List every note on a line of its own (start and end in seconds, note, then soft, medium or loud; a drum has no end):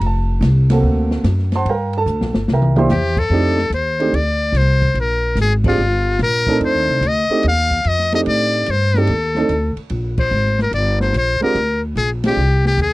0.00 0.40 F1 medium
0.00 ride medium
0.06 1.24 A5 medium
0.41 0.82 C2 loud
0.41 snare medium
0.41 hi-hat pedal medium
0.41 ride medium
0.70 1.23 A#3 medium
0.70 1.23 C4 medium
0.70 1.23 F#4 medium
0.70 1.24 A4 medium
0.70 snare medium
0.70 ride medium
0.83 1.23 D2 medium
1.11 snare medium
1.24 1.65 F#2 medium
1.24 snare medium
1.24 hi-hat pedal medium
1.24 ride medium
1.38 snare soft
1.52 1.68 A5 medium
1.52 1.68 C6 loud
1.52 snare soft
1.52 ride soft
1.56 1.68 C5 medium
1.56 1.68 F#5 medium
1.65 2.05 G2 medium
1.65 1.95 A#5 medium
1.65 ride medium
1.69 1.95 A#4 medium
1.69 1.95 F5 medium
1.69 1.95 G5 medium
1.93 ride medium
1.97 2.47 A4 medium
1.97 2.47 A5 loud
2.06 2.20 D2 medium
2.06 hi-hat pedal soft
2.20 2.33 A#1 medium
2.20 snare medium
2.34 2.47 G1 medium
2.34 snare medium
2.48 2.89 C2 medium
2.48 snare medium
2.53 2.78 A#4 medium
2.53 2.77 E5 medium
2.53 2.77 G5 medium
2.53 2.78 A#5 medium
2.62 mid tom medium
2.76 2.89 A#3 medium
2.76 2.89 D4 medium
2.76 2.89 E4 medium
2.76 2.89 G4 medium
2.76 3.16 C5 medium
2.76 3.16 E5 medium
2.76 3.16 G5 medium
2.76 3.16 C6 loud
2.76 mid tom medium
2.89 3.29 E2 loud
2.89 3.20 G4 medium
2.89 snare medium
2.89 hi-hat pedal medium
3.17 3.73 A4 loud
3.17 kick medium
3.17 crash medium
3.30 3.69 F2 medium
3.30 3.56 A3 medium
3.30 3.56 C4 medium
3.30 3.57 D4 medium
3.30 3.57 D#4 medium
3.30 3.57 G4 medium
3.58 snare soft
3.70 4.11 D#2 medium
3.70 hi-hat pedal medium
3.70 ride medium
3.74 4.17 C5 medium
3.99 4.12 A3 medium
3.99 4.12 C4 medium
3.99 4.12 D4 medium
3.99 4.13 D#4 medium
3.99 4.13 G4 medium
3.99 ride soft
4.13 4.52 D2 medium
4.13 4.59 D5 loud
4.13 ride medium
4.52 4.94 C2 medium
4.52 snare soft
4.52 hi-hat pedal soft
4.52 ride medium
4.57 4.97 C5 loud
4.82 kick soft
4.82 ride soft
4.94 5.35 A#1 medium
4.94 ride medium
5.00 5.37 A#4 medium
5.35 5.77 G#1 medium
5.35 snare soft
5.35 hi-hat pedal medium
5.35 ride medium
5.42 5.53 G#4 medium
5.64 5.78 G#3 medium
5.64 5.78 C4 medium
5.64 5.78 D4 medium
5.64 5.78 F4 medium
5.64 6.18 F4 medium
5.64 5.79 G4 medium
5.64 kick medium
5.64 crash medium
5.78 6.19 G1 medium
6.19 6.60 A#1 medium
6.19 6.60 A#4 loud
6.19 snare soft
6.19 hi-hat pedal medium
6.19 ride medium
6.46 6.99 A3 medium
6.46 7.00 C4 medium
6.46 7.00 D4 medium
6.46 7.00 D#4 medium
6.46 7.01 A4 medium
6.46 kick medium
6.46 ride soft
6.60 6.74 F2 medium
6.60 ride medium
6.65 7.09 C5 loud
6.74 6.87 D#2 soft
6.88 7.00 C2 medium
7.01 7.27 D2 medium
7.01 hi-hat pedal medium
7.01 ride medium
7.07 7.46 D#5 medium
7.29 7.42 A3 medium
7.29 7.43 C4 medium
7.29 7.43 D4 medium
7.29 7.43 D#4 medium
7.29 7.43 G4 medium
7.29 muted upright bass stroke soft
7.43 7.84 D#2 medium
7.43 ride medium
7.48 7.89 F5 loud
7.71 kick soft
7.84 8.25 F2 medium
7.84 8.14 D#5 loud
7.84 hi-hat pedal soft
7.84 ride medium
7.99 snare soft
8.13 8.65 A3 medium
8.13 8.65 C4 medium
8.13 8.65 D4 medium
8.13 8.66 D#4 medium
8.13 8.66 G4 medium
8.13 8.21 D#5 loud
8.13 snare soft
8.13 ride soft
8.26 8.66 A2 medium
8.26 8.72 D5 loud
8.26 ride medium
8.53 ride soft
8.66 9.08 G2 medium
8.66 hi-hat pedal medium
8.66 ride medium
8.71 9.00 C5 loud
8.94 9.08 A3 medium
8.94 9.08 C4 medium
8.94 9.08 D4 medium
8.94 9.09 D#4 medium
8.94 9.09 G4 medium
8.94 snare soft
8.98 9.79 A4 medium
9.07 9.48 D#2 medium
9.07 ride medium
9.35 9.49 A3 medium
9.35 9.49 C4 medium
9.35 9.49 D4 medium
9.35 9.49 D#4 medium
9.35 9.49 A4 medium
9.35 snare soft
9.49 9.75 D2 medium
9.49 hi-hat pedal medium
9.49 ride medium
9.76 muted upright bass stroke soft
9.76 ride soft
9.90 10.31 A#1 medium
9.90 ride medium
10.18 10.58 C5 medium
10.18 kick medium
10.18 crash medium
10.31 10.71 G#1 medium
10.31 hi-hat pedal medium
10.45 snare soft
10.59 10.74 A#4 medium
10.59 snare soft
10.71 11.12 G1 medium
10.71 11.00 D5 medium
10.71 ride medium
11.00 11.14 C5 medium
11.00 snare soft
11.13 11.39 A#1 medium
11.13 hi-hat pedal medium
11.13 ride medium
11.18 11.42 C5 medium
11.40 11.54 G#3 medium
11.40 11.54 C4 medium
11.40 11.55 D4 medium
11.40 11.55 F4 medium
11.40 11.55 G4 medium
11.40 11.81 A#4 medium
11.40 muted upright bass stroke soft
11.40 ride soft
11.55 11.95 D2 medium
11.55 ride medium
11.96 12.36 A#1 medium
11.96 12.10 G#4 medium
11.96 hi-hat pedal medium
11.96 ride medium
12.24 12.38 G#3 medium
12.24 12.38 C4 medium
12.24 12.38 D4 medium
12.24 12.38 F4 medium
12.24 12.64 G4 medium
12.24 12.39 G4 medium
12.24 snare medium
12.24 ride medium
12.36 12.77 C2 medium
12.65 12.80 G4 medium
12.65 snare soft
12.77 12.93 D#2 medium
12.77 hi-hat pedal medium
12.77 ride medium
12.82 12.93 G#4 medium